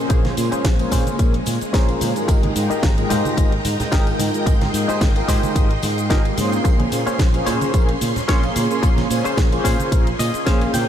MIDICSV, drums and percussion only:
0, 0, Header, 1, 2, 480
1, 0, Start_track
1, 0, Tempo, 545455
1, 91, Time_signature, 4, 2, 24, 8
1, 9578, End_track
2, 0, Start_track
2, 0, Title_t, "Drums"
2, 87, Note_on_c, 9, 42, 91
2, 88, Note_on_c, 9, 36, 115
2, 92, Note_on_c, 9, 82, 30
2, 96, Note_on_c, 9, 54, 44
2, 175, Note_off_c, 9, 42, 0
2, 176, Note_off_c, 9, 36, 0
2, 180, Note_off_c, 9, 82, 0
2, 184, Note_off_c, 9, 54, 0
2, 218, Note_on_c, 9, 42, 37
2, 220, Note_on_c, 9, 38, 36
2, 221, Note_on_c, 9, 63, 91
2, 222, Note_on_c, 9, 54, 33
2, 306, Note_off_c, 9, 42, 0
2, 308, Note_off_c, 9, 38, 0
2, 309, Note_off_c, 9, 63, 0
2, 310, Note_off_c, 9, 54, 0
2, 328, Note_on_c, 9, 46, 100
2, 329, Note_on_c, 9, 54, 89
2, 333, Note_on_c, 9, 82, 69
2, 416, Note_off_c, 9, 46, 0
2, 417, Note_off_c, 9, 54, 0
2, 421, Note_off_c, 9, 82, 0
2, 456, Note_on_c, 9, 54, 38
2, 458, Note_on_c, 9, 42, 37
2, 463, Note_on_c, 9, 82, 42
2, 544, Note_off_c, 9, 54, 0
2, 546, Note_off_c, 9, 42, 0
2, 551, Note_off_c, 9, 82, 0
2, 568, Note_on_c, 9, 36, 116
2, 568, Note_on_c, 9, 42, 89
2, 569, Note_on_c, 9, 54, 49
2, 570, Note_on_c, 9, 38, 120
2, 571, Note_on_c, 9, 63, 63
2, 573, Note_on_c, 9, 82, 30
2, 656, Note_off_c, 9, 36, 0
2, 656, Note_off_c, 9, 42, 0
2, 657, Note_off_c, 9, 54, 0
2, 658, Note_off_c, 9, 38, 0
2, 659, Note_off_c, 9, 63, 0
2, 661, Note_off_c, 9, 82, 0
2, 697, Note_on_c, 9, 54, 34
2, 699, Note_on_c, 9, 42, 38
2, 785, Note_off_c, 9, 54, 0
2, 787, Note_off_c, 9, 42, 0
2, 804, Note_on_c, 9, 54, 87
2, 808, Note_on_c, 9, 36, 58
2, 809, Note_on_c, 9, 46, 103
2, 810, Note_on_c, 9, 64, 79
2, 813, Note_on_c, 9, 82, 67
2, 892, Note_off_c, 9, 54, 0
2, 896, Note_off_c, 9, 36, 0
2, 897, Note_off_c, 9, 46, 0
2, 898, Note_off_c, 9, 64, 0
2, 901, Note_off_c, 9, 82, 0
2, 939, Note_on_c, 9, 63, 82
2, 940, Note_on_c, 9, 42, 38
2, 942, Note_on_c, 9, 54, 33
2, 945, Note_on_c, 9, 82, 42
2, 1027, Note_off_c, 9, 63, 0
2, 1028, Note_off_c, 9, 42, 0
2, 1030, Note_off_c, 9, 54, 0
2, 1033, Note_off_c, 9, 82, 0
2, 1046, Note_on_c, 9, 54, 50
2, 1049, Note_on_c, 9, 36, 113
2, 1049, Note_on_c, 9, 42, 88
2, 1054, Note_on_c, 9, 82, 30
2, 1134, Note_off_c, 9, 54, 0
2, 1137, Note_off_c, 9, 36, 0
2, 1137, Note_off_c, 9, 42, 0
2, 1142, Note_off_c, 9, 82, 0
2, 1180, Note_on_c, 9, 42, 36
2, 1268, Note_off_c, 9, 42, 0
2, 1283, Note_on_c, 9, 54, 90
2, 1289, Note_on_c, 9, 63, 59
2, 1290, Note_on_c, 9, 46, 104
2, 1294, Note_on_c, 9, 82, 72
2, 1371, Note_off_c, 9, 54, 0
2, 1377, Note_off_c, 9, 63, 0
2, 1378, Note_off_c, 9, 46, 0
2, 1382, Note_off_c, 9, 82, 0
2, 1419, Note_on_c, 9, 54, 41
2, 1420, Note_on_c, 9, 42, 38
2, 1425, Note_on_c, 9, 82, 42
2, 1507, Note_off_c, 9, 54, 0
2, 1508, Note_off_c, 9, 42, 0
2, 1513, Note_off_c, 9, 82, 0
2, 1528, Note_on_c, 9, 36, 121
2, 1528, Note_on_c, 9, 54, 49
2, 1530, Note_on_c, 9, 42, 90
2, 1532, Note_on_c, 9, 38, 119
2, 1535, Note_on_c, 9, 82, 31
2, 1616, Note_off_c, 9, 36, 0
2, 1616, Note_off_c, 9, 54, 0
2, 1618, Note_off_c, 9, 42, 0
2, 1620, Note_off_c, 9, 38, 0
2, 1623, Note_off_c, 9, 82, 0
2, 1659, Note_on_c, 9, 42, 35
2, 1661, Note_on_c, 9, 54, 32
2, 1747, Note_off_c, 9, 42, 0
2, 1749, Note_off_c, 9, 54, 0
2, 1770, Note_on_c, 9, 46, 102
2, 1771, Note_on_c, 9, 63, 87
2, 1775, Note_on_c, 9, 82, 70
2, 1780, Note_on_c, 9, 54, 82
2, 1858, Note_off_c, 9, 46, 0
2, 1859, Note_off_c, 9, 63, 0
2, 1863, Note_off_c, 9, 82, 0
2, 1868, Note_off_c, 9, 54, 0
2, 1901, Note_on_c, 9, 42, 37
2, 1902, Note_on_c, 9, 54, 39
2, 1906, Note_on_c, 9, 82, 40
2, 1989, Note_off_c, 9, 42, 0
2, 1990, Note_off_c, 9, 54, 0
2, 1994, Note_off_c, 9, 82, 0
2, 2009, Note_on_c, 9, 36, 118
2, 2011, Note_on_c, 9, 42, 90
2, 2012, Note_on_c, 9, 54, 51
2, 2016, Note_on_c, 9, 82, 31
2, 2097, Note_off_c, 9, 36, 0
2, 2099, Note_off_c, 9, 42, 0
2, 2100, Note_off_c, 9, 54, 0
2, 2104, Note_off_c, 9, 82, 0
2, 2141, Note_on_c, 9, 42, 36
2, 2145, Note_on_c, 9, 63, 91
2, 2229, Note_off_c, 9, 42, 0
2, 2233, Note_off_c, 9, 63, 0
2, 2251, Note_on_c, 9, 46, 105
2, 2256, Note_on_c, 9, 82, 67
2, 2258, Note_on_c, 9, 54, 87
2, 2339, Note_off_c, 9, 46, 0
2, 2344, Note_off_c, 9, 82, 0
2, 2346, Note_off_c, 9, 54, 0
2, 2381, Note_on_c, 9, 42, 37
2, 2384, Note_on_c, 9, 54, 36
2, 2386, Note_on_c, 9, 82, 39
2, 2469, Note_off_c, 9, 42, 0
2, 2472, Note_off_c, 9, 54, 0
2, 2474, Note_off_c, 9, 82, 0
2, 2489, Note_on_c, 9, 36, 122
2, 2490, Note_on_c, 9, 54, 48
2, 2491, Note_on_c, 9, 42, 82
2, 2492, Note_on_c, 9, 38, 114
2, 2496, Note_on_c, 9, 82, 29
2, 2499, Note_on_c, 9, 63, 62
2, 2577, Note_off_c, 9, 36, 0
2, 2578, Note_off_c, 9, 54, 0
2, 2579, Note_off_c, 9, 42, 0
2, 2580, Note_off_c, 9, 38, 0
2, 2584, Note_off_c, 9, 82, 0
2, 2587, Note_off_c, 9, 63, 0
2, 2622, Note_on_c, 9, 42, 36
2, 2626, Note_on_c, 9, 54, 31
2, 2710, Note_off_c, 9, 42, 0
2, 2714, Note_off_c, 9, 54, 0
2, 2731, Note_on_c, 9, 46, 101
2, 2735, Note_on_c, 9, 54, 81
2, 2736, Note_on_c, 9, 82, 67
2, 2738, Note_on_c, 9, 64, 78
2, 2819, Note_off_c, 9, 46, 0
2, 2823, Note_off_c, 9, 54, 0
2, 2824, Note_off_c, 9, 82, 0
2, 2826, Note_off_c, 9, 64, 0
2, 2861, Note_on_c, 9, 63, 88
2, 2862, Note_on_c, 9, 42, 36
2, 2863, Note_on_c, 9, 54, 34
2, 2867, Note_on_c, 9, 82, 41
2, 2949, Note_off_c, 9, 63, 0
2, 2950, Note_off_c, 9, 42, 0
2, 2951, Note_off_c, 9, 54, 0
2, 2955, Note_off_c, 9, 82, 0
2, 2968, Note_on_c, 9, 36, 115
2, 2972, Note_on_c, 9, 42, 89
2, 2973, Note_on_c, 9, 54, 47
2, 2977, Note_on_c, 9, 82, 30
2, 3056, Note_off_c, 9, 36, 0
2, 3060, Note_off_c, 9, 42, 0
2, 3061, Note_off_c, 9, 54, 0
2, 3065, Note_off_c, 9, 82, 0
2, 3101, Note_on_c, 9, 42, 36
2, 3189, Note_off_c, 9, 42, 0
2, 3209, Note_on_c, 9, 54, 82
2, 3211, Note_on_c, 9, 46, 109
2, 3213, Note_on_c, 9, 63, 68
2, 3216, Note_on_c, 9, 82, 69
2, 3297, Note_off_c, 9, 54, 0
2, 3299, Note_off_c, 9, 46, 0
2, 3301, Note_off_c, 9, 63, 0
2, 3304, Note_off_c, 9, 82, 0
2, 3342, Note_on_c, 9, 54, 38
2, 3343, Note_on_c, 9, 42, 37
2, 3344, Note_on_c, 9, 38, 36
2, 3347, Note_on_c, 9, 64, 83
2, 3348, Note_on_c, 9, 82, 42
2, 3430, Note_off_c, 9, 54, 0
2, 3431, Note_off_c, 9, 42, 0
2, 3432, Note_off_c, 9, 38, 0
2, 3435, Note_off_c, 9, 64, 0
2, 3436, Note_off_c, 9, 82, 0
2, 3446, Note_on_c, 9, 54, 49
2, 3449, Note_on_c, 9, 36, 123
2, 3453, Note_on_c, 9, 42, 85
2, 3454, Note_on_c, 9, 38, 116
2, 3458, Note_on_c, 9, 82, 30
2, 3534, Note_off_c, 9, 54, 0
2, 3537, Note_off_c, 9, 36, 0
2, 3541, Note_off_c, 9, 42, 0
2, 3542, Note_off_c, 9, 38, 0
2, 3546, Note_off_c, 9, 82, 0
2, 3580, Note_on_c, 9, 54, 35
2, 3581, Note_on_c, 9, 42, 36
2, 3668, Note_off_c, 9, 54, 0
2, 3669, Note_off_c, 9, 42, 0
2, 3688, Note_on_c, 9, 63, 99
2, 3691, Note_on_c, 9, 46, 108
2, 3691, Note_on_c, 9, 54, 82
2, 3696, Note_on_c, 9, 82, 73
2, 3776, Note_off_c, 9, 63, 0
2, 3779, Note_off_c, 9, 46, 0
2, 3779, Note_off_c, 9, 54, 0
2, 3784, Note_off_c, 9, 82, 0
2, 3821, Note_on_c, 9, 42, 35
2, 3821, Note_on_c, 9, 54, 37
2, 3826, Note_on_c, 9, 82, 38
2, 3909, Note_off_c, 9, 42, 0
2, 3909, Note_off_c, 9, 54, 0
2, 3914, Note_off_c, 9, 82, 0
2, 3929, Note_on_c, 9, 36, 120
2, 3931, Note_on_c, 9, 42, 86
2, 3932, Note_on_c, 9, 54, 51
2, 3936, Note_on_c, 9, 82, 31
2, 4017, Note_off_c, 9, 36, 0
2, 4019, Note_off_c, 9, 42, 0
2, 4020, Note_off_c, 9, 54, 0
2, 4024, Note_off_c, 9, 82, 0
2, 4061, Note_on_c, 9, 42, 35
2, 4062, Note_on_c, 9, 38, 34
2, 4062, Note_on_c, 9, 63, 95
2, 4063, Note_on_c, 9, 54, 31
2, 4149, Note_off_c, 9, 42, 0
2, 4150, Note_off_c, 9, 38, 0
2, 4150, Note_off_c, 9, 63, 0
2, 4151, Note_off_c, 9, 54, 0
2, 4172, Note_on_c, 9, 46, 99
2, 4174, Note_on_c, 9, 54, 73
2, 4177, Note_on_c, 9, 82, 74
2, 4260, Note_off_c, 9, 46, 0
2, 4262, Note_off_c, 9, 54, 0
2, 4265, Note_off_c, 9, 82, 0
2, 4302, Note_on_c, 9, 42, 34
2, 4305, Note_on_c, 9, 54, 34
2, 4307, Note_on_c, 9, 82, 40
2, 4390, Note_off_c, 9, 42, 0
2, 4393, Note_off_c, 9, 54, 0
2, 4395, Note_off_c, 9, 82, 0
2, 4409, Note_on_c, 9, 36, 116
2, 4411, Note_on_c, 9, 42, 81
2, 4412, Note_on_c, 9, 54, 44
2, 4413, Note_on_c, 9, 38, 106
2, 4413, Note_on_c, 9, 63, 72
2, 4416, Note_on_c, 9, 82, 31
2, 4497, Note_off_c, 9, 36, 0
2, 4499, Note_off_c, 9, 42, 0
2, 4500, Note_off_c, 9, 54, 0
2, 4501, Note_off_c, 9, 38, 0
2, 4501, Note_off_c, 9, 63, 0
2, 4504, Note_off_c, 9, 82, 0
2, 4540, Note_on_c, 9, 42, 35
2, 4540, Note_on_c, 9, 54, 33
2, 4628, Note_off_c, 9, 42, 0
2, 4628, Note_off_c, 9, 54, 0
2, 4649, Note_on_c, 9, 36, 55
2, 4650, Note_on_c, 9, 64, 69
2, 4651, Note_on_c, 9, 46, 101
2, 4655, Note_on_c, 9, 54, 85
2, 4656, Note_on_c, 9, 82, 72
2, 4737, Note_off_c, 9, 36, 0
2, 4738, Note_off_c, 9, 64, 0
2, 4739, Note_off_c, 9, 46, 0
2, 4743, Note_off_c, 9, 54, 0
2, 4744, Note_off_c, 9, 82, 0
2, 4781, Note_on_c, 9, 42, 36
2, 4781, Note_on_c, 9, 63, 85
2, 4786, Note_on_c, 9, 82, 40
2, 4793, Note_on_c, 9, 54, 33
2, 4869, Note_off_c, 9, 42, 0
2, 4869, Note_off_c, 9, 63, 0
2, 4874, Note_off_c, 9, 82, 0
2, 4881, Note_off_c, 9, 54, 0
2, 4889, Note_on_c, 9, 36, 110
2, 4892, Note_on_c, 9, 42, 87
2, 4893, Note_on_c, 9, 54, 51
2, 4897, Note_on_c, 9, 82, 32
2, 4977, Note_off_c, 9, 36, 0
2, 4980, Note_off_c, 9, 42, 0
2, 4981, Note_off_c, 9, 54, 0
2, 4985, Note_off_c, 9, 82, 0
2, 5022, Note_on_c, 9, 42, 36
2, 5110, Note_off_c, 9, 42, 0
2, 5125, Note_on_c, 9, 54, 84
2, 5127, Note_on_c, 9, 63, 60
2, 5131, Note_on_c, 9, 46, 105
2, 5136, Note_on_c, 9, 82, 75
2, 5213, Note_off_c, 9, 54, 0
2, 5215, Note_off_c, 9, 63, 0
2, 5219, Note_off_c, 9, 46, 0
2, 5224, Note_off_c, 9, 82, 0
2, 5262, Note_on_c, 9, 42, 35
2, 5266, Note_on_c, 9, 54, 35
2, 5267, Note_on_c, 9, 82, 42
2, 5350, Note_off_c, 9, 42, 0
2, 5354, Note_off_c, 9, 54, 0
2, 5355, Note_off_c, 9, 82, 0
2, 5369, Note_on_c, 9, 36, 116
2, 5369, Note_on_c, 9, 54, 52
2, 5372, Note_on_c, 9, 42, 84
2, 5374, Note_on_c, 9, 38, 109
2, 5377, Note_on_c, 9, 82, 31
2, 5457, Note_off_c, 9, 36, 0
2, 5457, Note_off_c, 9, 54, 0
2, 5460, Note_off_c, 9, 42, 0
2, 5462, Note_off_c, 9, 38, 0
2, 5465, Note_off_c, 9, 82, 0
2, 5501, Note_on_c, 9, 54, 32
2, 5503, Note_on_c, 9, 42, 36
2, 5589, Note_off_c, 9, 54, 0
2, 5591, Note_off_c, 9, 42, 0
2, 5609, Note_on_c, 9, 54, 80
2, 5612, Note_on_c, 9, 46, 104
2, 5614, Note_on_c, 9, 63, 83
2, 5617, Note_on_c, 9, 82, 73
2, 5697, Note_off_c, 9, 54, 0
2, 5700, Note_off_c, 9, 46, 0
2, 5702, Note_off_c, 9, 63, 0
2, 5705, Note_off_c, 9, 82, 0
2, 5741, Note_on_c, 9, 42, 33
2, 5746, Note_on_c, 9, 82, 37
2, 5747, Note_on_c, 9, 54, 37
2, 5829, Note_off_c, 9, 42, 0
2, 5834, Note_off_c, 9, 82, 0
2, 5835, Note_off_c, 9, 54, 0
2, 5849, Note_on_c, 9, 36, 116
2, 5851, Note_on_c, 9, 42, 82
2, 5851, Note_on_c, 9, 54, 44
2, 5856, Note_on_c, 9, 82, 34
2, 5937, Note_off_c, 9, 36, 0
2, 5939, Note_off_c, 9, 42, 0
2, 5939, Note_off_c, 9, 54, 0
2, 5944, Note_off_c, 9, 82, 0
2, 5981, Note_on_c, 9, 42, 36
2, 5981, Note_on_c, 9, 63, 92
2, 6069, Note_off_c, 9, 42, 0
2, 6069, Note_off_c, 9, 63, 0
2, 6087, Note_on_c, 9, 54, 86
2, 6090, Note_on_c, 9, 46, 102
2, 6095, Note_on_c, 9, 82, 74
2, 6175, Note_off_c, 9, 54, 0
2, 6178, Note_off_c, 9, 46, 0
2, 6183, Note_off_c, 9, 82, 0
2, 6219, Note_on_c, 9, 42, 34
2, 6219, Note_on_c, 9, 54, 33
2, 6224, Note_on_c, 9, 82, 41
2, 6307, Note_off_c, 9, 42, 0
2, 6307, Note_off_c, 9, 54, 0
2, 6312, Note_off_c, 9, 82, 0
2, 6326, Note_on_c, 9, 63, 61
2, 6330, Note_on_c, 9, 36, 119
2, 6330, Note_on_c, 9, 42, 79
2, 6332, Note_on_c, 9, 38, 104
2, 6332, Note_on_c, 9, 54, 49
2, 6335, Note_on_c, 9, 82, 31
2, 6414, Note_off_c, 9, 63, 0
2, 6418, Note_off_c, 9, 36, 0
2, 6418, Note_off_c, 9, 42, 0
2, 6420, Note_off_c, 9, 38, 0
2, 6420, Note_off_c, 9, 54, 0
2, 6423, Note_off_c, 9, 82, 0
2, 6460, Note_on_c, 9, 42, 34
2, 6461, Note_on_c, 9, 54, 33
2, 6548, Note_off_c, 9, 42, 0
2, 6549, Note_off_c, 9, 54, 0
2, 6569, Note_on_c, 9, 46, 97
2, 6574, Note_on_c, 9, 54, 81
2, 6574, Note_on_c, 9, 82, 71
2, 6577, Note_on_c, 9, 64, 75
2, 6657, Note_off_c, 9, 46, 0
2, 6662, Note_off_c, 9, 54, 0
2, 6662, Note_off_c, 9, 82, 0
2, 6665, Note_off_c, 9, 64, 0
2, 6700, Note_on_c, 9, 42, 35
2, 6700, Note_on_c, 9, 63, 78
2, 6705, Note_on_c, 9, 82, 42
2, 6706, Note_on_c, 9, 54, 31
2, 6788, Note_off_c, 9, 42, 0
2, 6788, Note_off_c, 9, 63, 0
2, 6793, Note_off_c, 9, 82, 0
2, 6794, Note_off_c, 9, 54, 0
2, 6809, Note_on_c, 9, 36, 113
2, 6810, Note_on_c, 9, 42, 85
2, 6813, Note_on_c, 9, 54, 51
2, 6815, Note_on_c, 9, 82, 32
2, 6897, Note_off_c, 9, 36, 0
2, 6898, Note_off_c, 9, 42, 0
2, 6901, Note_off_c, 9, 54, 0
2, 6903, Note_off_c, 9, 82, 0
2, 6940, Note_on_c, 9, 42, 37
2, 7028, Note_off_c, 9, 42, 0
2, 7051, Note_on_c, 9, 46, 103
2, 7056, Note_on_c, 9, 54, 83
2, 7056, Note_on_c, 9, 82, 74
2, 7057, Note_on_c, 9, 63, 62
2, 7139, Note_off_c, 9, 46, 0
2, 7144, Note_off_c, 9, 54, 0
2, 7144, Note_off_c, 9, 82, 0
2, 7145, Note_off_c, 9, 63, 0
2, 7182, Note_on_c, 9, 42, 37
2, 7184, Note_on_c, 9, 38, 34
2, 7184, Note_on_c, 9, 64, 76
2, 7185, Note_on_c, 9, 54, 34
2, 7187, Note_on_c, 9, 82, 43
2, 7270, Note_off_c, 9, 42, 0
2, 7272, Note_off_c, 9, 38, 0
2, 7272, Note_off_c, 9, 64, 0
2, 7273, Note_off_c, 9, 54, 0
2, 7275, Note_off_c, 9, 82, 0
2, 7289, Note_on_c, 9, 36, 114
2, 7292, Note_on_c, 9, 54, 50
2, 7293, Note_on_c, 9, 42, 89
2, 7294, Note_on_c, 9, 38, 107
2, 7297, Note_on_c, 9, 82, 34
2, 7377, Note_off_c, 9, 36, 0
2, 7380, Note_off_c, 9, 54, 0
2, 7381, Note_off_c, 9, 42, 0
2, 7382, Note_off_c, 9, 38, 0
2, 7385, Note_off_c, 9, 82, 0
2, 7423, Note_on_c, 9, 42, 35
2, 7426, Note_on_c, 9, 54, 29
2, 7511, Note_off_c, 9, 42, 0
2, 7514, Note_off_c, 9, 54, 0
2, 7531, Note_on_c, 9, 46, 102
2, 7531, Note_on_c, 9, 54, 82
2, 7534, Note_on_c, 9, 63, 83
2, 7536, Note_on_c, 9, 82, 79
2, 7619, Note_off_c, 9, 46, 0
2, 7619, Note_off_c, 9, 54, 0
2, 7622, Note_off_c, 9, 63, 0
2, 7624, Note_off_c, 9, 82, 0
2, 7661, Note_on_c, 9, 42, 33
2, 7666, Note_on_c, 9, 82, 40
2, 7667, Note_on_c, 9, 54, 35
2, 7749, Note_off_c, 9, 42, 0
2, 7754, Note_off_c, 9, 82, 0
2, 7755, Note_off_c, 9, 54, 0
2, 7769, Note_on_c, 9, 36, 107
2, 7772, Note_on_c, 9, 42, 90
2, 7773, Note_on_c, 9, 54, 46
2, 7777, Note_on_c, 9, 82, 33
2, 7857, Note_off_c, 9, 36, 0
2, 7860, Note_off_c, 9, 42, 0
2, 7861, Note_off_c, 9, 54, 0
2, 7865, Note_off_c, 9, 82, 0
2, 7901, Note_on_c, 9, 63, 86
2, 7902, Note_on_c, 9, 42, 37
2, 7904, Note_on_c, 9, 38, 33
2, 7909, Note_on_c, 9, 54, 35
2, 7989, Note_off_c, 9, 63, 0
2, 7990, Note_off_c, 9, 42, 0
2, 7992, Note_off_c, 9, 38, 0
2, 7997, Note_off_c, 9, 54, 0
2, 8012, Note_on_c, 9, 54, 87
2, 8013, Note_on_c, 9, 46, 93
2, 8018, Note_on_c, 9, 82, 76
2, 8100, Note_off_c, 9, 54, 0
2, 8101, Note_off_c, 9, 46, 0
2, 8106, Note_off_c, 9, 82, 0
2, 8142, Note_on_c, 9, 42, 38
2, 8146, Note_on_c, 9, 54, 36
2, 8147, Note_on_c, 9, 82, 44
2, 8230, Note_off_c, 9, 42, 0
2, 8234, Note_off_c, 9, 54, 0
2, 8235, Note_off_c, 9, 82, 0
2, 8249, Note_on_c, 9, 36, 111
2, 8250, Note_on_c, 9, 63, 60
2, 8252, Note_on_c, 9, 42, 83
2, 8253, Note_on_c, 9, 54, 47
2, 8254, Note_on_c, 9, 38, 104
2, 8257, Note_on_c, 9, 82, 33
2, 8337, Note_off_c, 9, 36, 0
2, 8338, Note_off_c, 9, 63, 0
2, 8340, Note_off_c, 9, 42, 0
2, 8341, Note_off_c, 9, 54, 0
2, 8342, Note_off_c, 9, 38, 0
2, 8345, Note_off_c, 9, 82, 0
2, 8381, Note_on_c, 9, 42, 37
2, 8385, Note_on_c, 9, 54, 36
2, 8469, Note_off_c, 9, 42, 0
2, 8473, Note_off_c, 9, 54, 0
2, 8489, Note_on_c, 9, 36, 52
2, 8491, Note_on_c, 9, 46, 97
2, 8495, Note_on_c, 9, 54, 87
2, 8496, Note_on_c, 9, 64, 80
2, 8496, Note_on_c, 9, 82, 76
2, 8577, Note_off_c, 9, 36, 0
2, 8579, Note_off_c, 9, 46, 0
2, 8583, Note_off_c, 9, 54, 0
2, 8584, Note_off_c, 9, 64, 0
2, 8584, Note_off_c, 9, 82, 0
2, 8621, Note_on_c, 9, 42, 37
2, 8621, Note_on_c, 9, 63, 74
2, 8625, Note_on_c, 9, 54, 36
2, 8626, Note_on_c, 9, 82, 43
2, 8709, Note_off_c, 9, 42, 0
2, 8709, Note_off_c, 9, 63, 0
2, 8713, Note_off_c, 9, 54, 0
2, 8714, Note_off_c, 9, 82, 0
2, 8729, Note_on_c, 9, 36, 106
2, 8731, Note_on_c, 9, 42, 93
2, 8733, Note_on_c, 9, 54, 50
2, 8736, Note_on_c, 9, 82, 36
2, 8817, Note_off_c, 9, 36, 0
2, 8819, Note_off_c, 9, 42, 0
2, 8821, Note_off_c, 9, 54, 0
2, 8824, Note_off_c, 9, 82, 0
2, 8862, Note_on_c, 9, 42, 39
2, 8950, Note_off_c, 9, 42, 0
2, 8968, Note_on_c, 9, 63, 55
2, 8972, Note_on_c, 9, 46, 97
2, 8976, Note_on_c, 9, 82, 82
2, 8977, Note_on_c, 9, 54, 90
2, 9056, Note_off_c, 9, 63, 0
2, 9060, Note_off_c, 9, 46, 0
2, 9064, Note_off_c, 9, 82, 0
2, 9065, Note_off_c, 9, 54, 0
2, 9100, Note_on_c, 9, 42, 38
2, 9105, Note_on_c, 9, 82, 44
2, 9107, Note_on_c, 9, 54, 35
2, 9188, Note_off_c, 9, 42, 0
2, 9193, Note_off_c, 9, 82, 0
2, 9195, Note_off_c, 9, 54, 0
2, 9209, Note_on_c, 9, 36, 115
2, 9210, Note_on_c, 9, 42, 89
2, 9212, Note_on_c, 9, 38, 112
2, 9213, Note_on_c, 9, 54, 49
2, 9215, Note_on_c, 9, 82, 34
2, 9297, Note_off_c, 9, 36, 0
2, 9298, Note_off_c, 9, 42, 0
2, 9300, Note_off_c, 9, 38, 0
2, 9301, Note_off_c, 9, 54, 0
2, 9303, Note_off_c, 9, 82, 0
2, 9341, Note_on_c, 9, 42, 37
2, 9341, Note_on_c, 9, 54, 36
2, 9429, Note_off_c, 9, 42, 0
2, 9429, Note_off_c, 9, 54, 0
2, 9448, Note_on_c, 9, 54, 82
2, 9449, Note_on_c, 9, 46, 96
2, 9454, Note_on_c, 9, 82, 79
2, 9461, Note_on_c, 9, 63, 81
2, 9536, Note_off_c, 9, 54, 0
2, 9537, Note_off_c, 9, 46, 0
2, 9542, Note_off_c, 9, 82, 0
2, 9549, Note_off_c, 9, 63, 0
2, 9578, End_track
0, 0, End_of_file